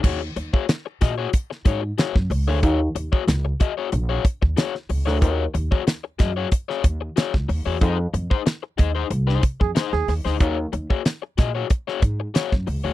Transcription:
<<
  \new Staff \with { instrumentName = "Overdriven electric guitar" } { \time 4/4 \key ees \dorian \tempo 4 = 93 <ges' aes' des''>16 r8 <ges' aes' des''>16 r8 <ges' aes' ees''>16 <ges' aes' des''>16 r8 <ges' aes' des''>16 r16 <ges' aes' des''>16 r8 <ges' aes' des''>16 | <ges' aes' des''>16 r8 <ges' aes' des''>16 r8 <ges' aes' ees''>16 <ges' aes' des''>16 r16 <ges' aes' des''>16 r8 <ges' aes' des''>16 r8 <ges' aes' des''>16 | <ges' aes' des''>16 r8 <ges' aes' des''>16 r8 <ges' aes' ees''>16 <ges' aes' des''>16 r16 <ges' aes' des''>16 r8 <ges' aes' des''>16 r8 <ges' aes' des''>16 | <ees' aes' c''>16 r8 <ees' aes' c''>16 r8 <ees' aes' ees''>16 <ees' aes' c''>16 r16 <ees' aes' c''>16 r8 <ees' aes' c''>16 r8 <ees' aes' c''>16 |
<ges' aes' des''>16 r8 <ges' aes' des''>16 r8 <ges' aes' ees''>16 <ges' aes' des''>16 r16 <ges' aes' des''>16 r8 <ges' aes' des''>16 r8 <ges' aes' des''>16 | }
  \new Staff \with { instrumentName = "Trombone" } { \time 4/4 \key ees \dorian r1 | r1 | r1 | r2 r8. aes'16 r16 aes'8 r16 |
r1 | }
  \new Staff \with { instrumentName = "Upright bass" } { \clef bass \time 4/4 \key ees \dorian ees,8 ees,16 r8. bes,8 r8 aes,8 r16 ges,16 des,16 d,16 | ees,8 ees,16 r16 des,8 r8 bes,,8 r16 ees,16 r8 des,16 d,16 | ees,8 ees,16 r8. ges,8 r8 ees,8 r16 des,16 ees,16 fes,16 | f,8 f,16 r8. ees,8 c,8 r16 f,16 r16 ees,16 ees,16 d,16 |
ees,8 ees,16 r8. bes,8 r8 aes,8 r16 ges,16 des,16 d,16 | }
  \new DrumStaff \with { instrumentName = "Drums" } \drummode { \time 4/4 <cymc bd>8 hh16 bd16 <hh sn>8 <hh bd sn>8 <hh bd>16 sn16 <hh bd>8 <hh sn>16 <bd sn>16 hho8 | <hh bd>8 hh16 bd16 <hh sn>8 <hh bd>8 hh8 <hh bd>16 bd16 <hh sn>16 sn16 hho16 sn16 | <hh bd>8 hh16 bd16 <hh sn>8 <hh bd sn>8 <hh bd>16 sn16 <hh bd>8 <hh sn>16 <bd sn>16 hho8 | <hh bd>8 hh16 bd16 <hh sn>8 <hh bd>8 hh16 sn16 <hh bd>16 bd16 <hh sn>16 sn16 <hho sn>16 sn16 |
<hh bd>8 hh16 bd16 <hh sn>8 <hh bd sn>8 <hh bd>16 sn16 <hh bd>8 <hh sn>16 <bd sn>16 hho8 | }
>>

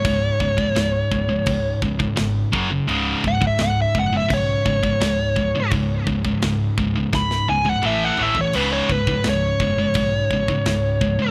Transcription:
<<
  \new Staff \with { instrumentName = "Lead electric guitar" } { \time 4/4 \key cis \minor \tempo 4 = 85 cis''2~ cis''8 r4. | r8 fis''16 e''16 fis''16 e''16 fis''16 e''16 cis''2 | r2 b''8 gis''16 fis''16 e''16 fis''16 e''16 cis''16 | b'16 cis''16 b'8 cis''2. | }
  \new Staff \with { instrumentName = "Distorted electric guitar" } { \clef bass \time 4/4 \key cis \minor <cis, gis,>8 <cis, gis,>16 <cis, gis,>16 <cis, gis,>8 <cis, gis,>16 <cis, gis,>16 <cis, gis,>8 <cis, gis,>16 <cis, gis,>16 <cis, gis,>8 <fis, cis fis>16 <fis, cis>16 | <cis, gis, cis>8 <cis, gis,>16 <cis, gis,>16 <cis, gis,>8 <cis, gis,>16 <cis, gis,>16 <cis, gis,>8 <cis, gis,>16 <cis, gis,>16 <cis, gis,>8 <cis, gis,>16 <cis, gis,>16 | <cis, gis,>8 <cis, gis,>16 <cis, gis,>16 <cis, gis,>8 <cis, gis,>16 <cis, gis,>16 <cis, gis,>8 <cis, gis,>16 <cis, gis,>16 <a, e a>8 <a, e a>16 <a, e>16 | <cis, gis, cis>8 <cis, gis,>16 <cis, gis,>16 <cis, gis,>8 <cis, gis,>16 <cis, gis,>16 <cis, gis,>8 <cis, gis,>16 <cis, gis,>16 <cis, gis,>8 <cis, gis,>16 <cis, gis,>16 | }
  \new Staff \with { instrumentName = "Picked electric bass" } { \clef bass \time 4/4 \key cis \minor cis,,8 cis,,8 cis,,8 cis,,8 cis,,8 cis,,8 gis,,8 fis,,8 | cis,,8 cis,,8 cis,,8 fis,,8 b,,8 gis,,8 cis,,4 | cis,,8 cis,,8 cis,,8 cis,,8 cis,,8 cis,,8 a,,8 a,,8 | cis,,8 cis,,8 cis,,8 fis,,8 b,,8 gis,,8 cis,,4 | }
  \new DrumStaff \with { instrumentName = "Drums" } \drummode { \time 4/4 <cymc bd>8 bd16 bd16 <cymc sn>8 bd8 <cymc bd>8 bd16 bd16 <cymc sn>8 bd8 | cymc8 bd16 bd16 <cymc sn>8 bd8 <cymc bd>8 bd16 bd16 <cymc sn>8 bd8 | <cymc bd>8 bd16 bd16 <cymc sn>8 bd8 <bd sn>16 sn8 tommh16 toml8 tomfh16 tomfh16 | cymc8 bd16 bd16 <cymc sn>8 bd8 <cymc bd>8 bd16 bd16 <cymc sn>8 bd8 | }
>>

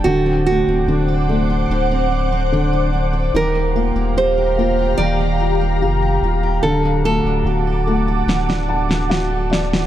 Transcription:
<<
  \new Staff \with { instrumentName = "Ambient pad" } { \time 4/4 \key d \phrygian \tempo 4 = 73 <c'' fis'' d'''>1 | <g' f'' bes''>1 | <fis'' a'' d'''>1 | }
  \new Staff \with { instrumentName = "Nylon-string guitar" } { \time 4/4 \key d \phrygian fis'8 fis'2 r4. | bes'4 c''4 d''2 | a'8 a'2 r4. | }
  \new Staff \with { instrumentName = "Steel-string acoustic guitar" } { \time 4/4 \key d \phrygian <d a'>16 c'16 d'16 c'16 d'16 a'16 d'16 a'16 <d a'>16 c'16 d'16 c'16 d'16 a'16 d'16 a'16 | <ees g'>16 bes16 f'16 bes16 f'16 g'16 f'16 g'16 <ees g'>16 bes16 f'16 bes16 f'16 g'16 f'16 g'16 | <d a'>16 d'16 fis'16 d'16 fis'16 a'16 fis'16 a'16 <d a'>16 d'16 fis'16 d'16 fis'16 a'16 fis'16 a'16 | }
  \new Staff \with { instrumentName = "Upright piano" } { \time 4/4 \key d \phrygian r1 | r1 | r2 r8 a''8 fis''8 d''8 | }
  \new Staff \with { instrumentName = "Upright piano" } { \time 4/4 \key d \phrygian d8 a8 d8 a4. d4 | ees8 bes8 g'8 bes4. g'4 | d8 a8 fis'8 a4. fis'4 | }
  \new Staff \with { instrumentName = "Sub bass" } { \clef bass \time 4/4 \key d \phrygian d,,8. d,,16 d,,4 d,,2 | ees,,8. ees,,16 ees,,4 ees,,4 f,,8 ees,,8 | d,,8. d,,16 d,,4 d,,2 | }
  \new DrumStaff \with { instrumentName = "Drums" } \drummode { \time 4/4 r4 r4 r4 r4 | r4 r4 r4 r4 | r4 r4 sn16 sn8 sn16 sn8 sn16 sn16 | }
>>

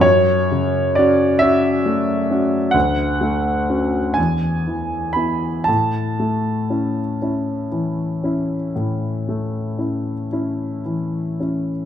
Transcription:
\new Staff \with { instrumentName = "Grand piano" } { \time 12/8 \key a \major \tempo 4. = 40 << { cis''4 d''8 e''4. fis''4. gis''4 b''8 | a''1~ a''4. r8 | } \\ { fis,8 cis8 <cis' fis'>8 <cis' fis'>8 a8 <cis' fis'>8 d,8 a8 <cis' fis'>8 e,8 e8 <b e'>8 | a,8 a8 <cis' e'>8 <cis' e'>8 e8 <cis' e'>8 a,8 a8 <cis' e'>8 <cis' e'>8 e8 <cis' e'>8 | } >> }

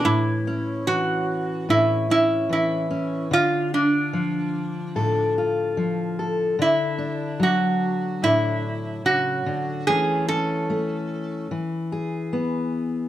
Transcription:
<<
  \new Staff \with { instrumentName = "Resonator guitar played with a steel bar" } { \time 4/4 \key a \major \tempo 4 = 73 e'4 fis'4 e'8 e'8 e'4 | f'8 d'2 r4. | e'4 fis'4 e'4 fis'4 | gis'8 a'4. r2 | }
  \new Staff \with { instrumentName = "Steel-string acoustic guitar" } { \clef bass \time 4/4 \key a \major << { r8 cis'4. cis'8 cis'4 cis'8 | r8 f'4. a'8 f'4 a'8 | r8 d'4. d'8 r4. | <a cis'>8 cis'4. r8 gis'4. | } \\ { <a, e>4 e4 a,4 e4 | d4 f4 a,4 f4 | d4 fis4 a,4 cis8 d8 | e4 a4 e4 b4 | } >> }
>>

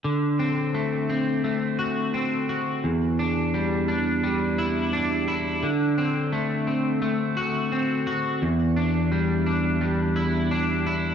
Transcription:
\new Staff \with { instrumentName = "Clean electric guitar" } { \time 4/4 \key d \mixolydian \tempo 4 = 86 d8 c'8 a8 c'8 a8 fis'8 c'8 fis'8 | e,8 d'8 g8 d'8 g8 e'8 d'8 e'8 | d8 c'8 a8 c'8 a8 fis'8 c'8 fis'8 | e,8 d'8 g8 d'8 g8 e'8 d'8 e'8 | }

